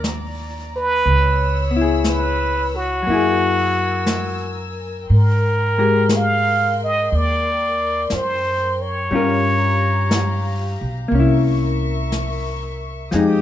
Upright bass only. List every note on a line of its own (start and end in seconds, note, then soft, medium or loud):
0.00 1.01 D#2 medium
1.05 3.02 C#2 medium
3.08 5.05 F#2 medium
5.10 7.07 G#2 medium
7.12 8.08 D#2 medium
8.12 9.07 F#2 medium
9.11 10.75 G2 medium
10.81 11.11 B1 medium
11.11 13.08 C2 medium
13.13 13.42 F2 medium